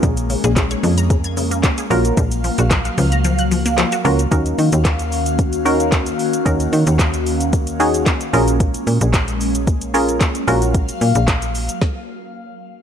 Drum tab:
HH |xxoxxxoxxxoxxxox|xxoxxxoxxxoxxxox|xxoxxxoxxxoxxxox|xxoxxxoxxxoxxxox|
SH |xxxxxxxxxxxxxxxx|xxxxxxxxxxxxxxxx|xxxxxxxxxxxxxxxx|xxxxxxxxxxxxxxxx|
CP |----x-------x---|----x-------x---|----x-------x---|----x-------x---|
SD |----o-------o---|----o-------o---|----o-------o---|----o-------o---|
BD |o---o---o---o---|o---o-----------|o---o---o---o---|o---o---o---o---|

HH |xxoxxxoxxxoxxxox|xxoxxxox--------|
SH |xxxxxxxxxxxxxxxx|xxxxxxxx--------|
CP |----x-------x---|----x-----------|
SD |----o-------o---|----o---o-------|
BD |o---o---o---o---|o---o---o-------|